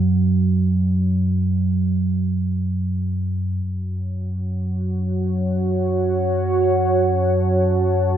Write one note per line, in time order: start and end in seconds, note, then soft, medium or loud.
0.00 3.61 F#2 medium
0.00 3.62 F#3 medium
3.63 8.17 F#2 medium
3.63 8.17 F#3 medium
3.63 8.17 F#4 medium
3.84 8.17 C#5 medium
4.07 8.17 F#5 medium
6.22 8.17 A5 medium